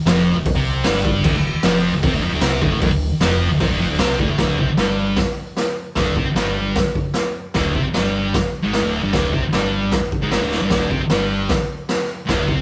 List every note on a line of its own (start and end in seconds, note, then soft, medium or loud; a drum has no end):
0.06 0.34 F1 loud
0.06 0.35 F2 loud
0.06 0.36 F3 loud
0.06 snare loud
0.06 open hi-hat medium
0.35 0.54 D1 medium
0.35 0.51 D2 medium
0.45 kick loud
0.45 open hi-hat medium
0.55 0.83 C2 loud
0.55 0.85 C3 medium
0.55 0.85 C4 loud
0.84 1.22 G1 medium
0.84 1.24 G2 loud
0.84 1.25 G3 loud
0.84 snare loud
0.84 open hi-hat medium
1.05 kick loud
1.24 1.34 D1 loud
1.24 1.34 D2 medium
1.24 1.35 D3 medium
1.24 kick loud
1.24 crash medium
1.34 1.53 D1 medium
1.34 1.51 D2 medium
1.63 1.91 F1 medium
1.63 1.93 F2 loud
1.63 1.93 F3 loud
1.63 snare loud
1.63 open hi-hat medium
1.93 2.02 D1 medium
1.93 2.03 D2 medium
2.03 2.11 C2 loud
2.03 2.13 C3 medium
2.03 2.13 C4 loud
2.03 kick loud
2.03 open hi-hat medium
2.12 2.21 D1 loud
2.12 2.22 D2 medium
2.12 2.23 D3 loud
2.21 2.30 F1 loud
2.21 2.32 F2 loud
2.21 2.33 F3 loud
2.30 2.41 D1 medium
2.30 2.41 D2 medium
2.30 2.42 D3 medium
2.41 2.60 C2 loud
2.41 2.61 C3 loud
2.41 2.62 C4 loud
2.41 snare loud
2.41 open hi-hat medium
2.62 2.70 D1 medium
2.62 2.71 D2 medium
2.62 2.72 D3 medium
2.62 kick loud
2.70 2.80 A1 loud
2.70 2.80 A2 loud
2.70 2.81 A3 loud
2.80 2.90 D1 loud
2.80 2.90 D2 medium
2.80 2.91 D3 loud
2.80 kick loud
2.80 open hi-hat medium
2.90 3.09 D1 medium
2.90 3.07 D2 medium
3.20 3.48 F1 loud
3.20 3.50 F2 medium
3.20 3.50 F3 loud
3.20 snare loud
3.20 open hi-hat medium
3.50 3.59 D1 medium
3.50 3.60 D2 medium
3.60 3.68 C2 loud
3.60 3.69 C3 loud
3.60 3.70 C4 loud
3.60 kick loud
3.60 open hi-hat medium
3.69 3.78 D1 loud
3.69 3.79 D2 medium
3.69 3.80 D3 loud
3.79 3.89 F1 loud
3.79 3.88 F2 medium
3.79 3.90 F3 loud
3.89 3.99 D1 medium
3.89 3.99 D2 medium
3.89 3.99 D3 loud
3.99 4.18 C2 loud
3.99 4.19 C3 loud
3.99 4.19 C4 loud
3.99 snare loud
3.99 open hi-hat medium
4.19 4.28 D1 medium
4.19 4.28 D2 medium
4.19 4.29 D3 loud
4.19 kick medium
4.29 4.38 A1 loud
4.29 4.39 A2 medium
4.29 4.39 A3 loud
4.38 4.57 D1 medium
4.38 4.59 D2 medium
4.38 4.59 D3 medium
4.38 kick loud
4.38 snare loud
4.38 open hi-hat soft
4.58 4.68 C2 medium
4.58 4.69 C3 medium
4.58 4.69 C4 medium
4.58 kick medium
4.68 muted picked electric bass stroke soft
4.68 muted distorted electric guitar stroke medium
4.77 5.15 G1 medium
4.77 5.17 G2 medium
4.77 5.18 G3 medium
4.77 snare loud
4.77 open hi-hat medium
5.16 kick loud
5.16 snare loud
5.16 open hi-hat medium
5.57 snare loud
5.57 open hi-hat medium
5.95 6.15 D1 medium
5.95 6.16 D2 medium
5.95 6.16 D3 loud
5.95 kick loud
5.95 snare loud
5.95 open hi-hat soft
6.16 6.25 C2 medium
6.16 6.27 C3 medium
6.16 6.27 C4 medium
6.16 kick medium
6.26 muted picked electric bass stroke soft
6.26 muted distorted electric guitar stroke medium
6.35 6.73 G1 medium
6.35 6.75 G2 medium
6.35 6.76 G3 medium
6.35 snare loud
6.35 open hi-hat soft
6.76 kick loud
6.76 snare loud
6.76 open hi-hat medium
6.95 kick medium
7.14 snare loud
7.14 open hi-hat medium
7.54 7.74 D1 loud
7.54 7.74 D2 medium
7.54 7.75 D3 medium
7.54 kick loud
7.54 snare loud
7.54 open hi-hat medium
7.75 7.84 C2 medium
7.75 7.84 C3 medium
7.75 7.85 C4 loud
7.75 kick medium
7.85 muted distorted electric guitar stroke medium
7.85 muted picked electric bass stroke soft
7.94 8.32 G1 medium
7.94 8.33 G2 medium
7.94 8.34 G3 loud
7.94 snare loud
7.94 open hi-hat medium
8.34 kick loud
8.34 snare loud
8.34 open hi-hat medium
8.63 8.83 G#1 medium
8.63 8.82 G#2 medium
8.63 8.83 G#3 medium
8.73 snare loud
8.73 open hi-hat medium
8.82 9.02 D1 medium
8.82 9.02 D2 medium
8.82 9.03 D3 medium
9.03 9.13 G1 loud
9.03 9.13 G2 medium
9.03 9.13 G3 medium
9.13 9.32 D1 medium
9.13 9.32 D2 medium
9.13 9.34 D3 loud
9.13 kick loud
9.13 snare loud
9.13 open hi-hat medium
9.33 9.42 C2 medium
9.33 9.42 C3 medium
9.33 9.43 C4 medium
9.33 kick medium
9.43 muted picked electric bass stroke soft
9.43 muted distorted electric guitar stroke medium
9.52 9.89 G1 medium
9.52 9.92 G2 medium
9.52 9.92 G3 medium
9.52 snare loud
9.52 open hi-hat soft
9.92 kick loud
9.92 snare loud
9.92 open hi-hat medium
10.12 kick medium
10.21 10.40 G#1 medium
10.21 10.41 G#2 medium
10.21 10.42 G#3 medium
10.31 snare loud
10.31 open hi-hat soft
10.41 10.60 D1 loud
10.41 10.61 D2 medium
10.41 10.61 D3 medium
10.51 snare medium
10.61 10.70 G1 medium
10.61 10.70 G2 medium
10.61 10.71 G3 medium
10.70 10.90 D1 medium
10.70 10.90 D2 medium
10.70 10.91 D3 loud
10.70 kick loud
10.70 snare loud
10.70 open hi-hat soft
10.90 11.00 C2 medium
10.90 11.00 C3 medium
10.90 11.00 C4 medium
10.90 kick medium
11.01 muted picked electric bass stroke soft
11.01 muted distorted electric guitar stroke medium
11.10 11.47 G1 medium
11.10 11.50 G2 medium
11.10 11.50 G3 loud
11.10 snare loud
11.10 open hi-hat medium
11.49 kick loud
11.49 snare loud
11.49 open hi-hat medium
11.89 snare loud
11.89 open hi-hat medium
12.27 12.47 D1 medium
12.27 12.47 D2 medium
12.27 12.48 D3 loud
12.27 kick loud
12.27 snare loud
12.27 open hi-hat medium
12.48 12.57 C2 medium
12.48 12.57 C3 medium
12.48 12.58 C4 loud
12.48 kick medium
12.57 muted distorted electric guitar stroke medium
12.57 muted picked electric bass stroke soft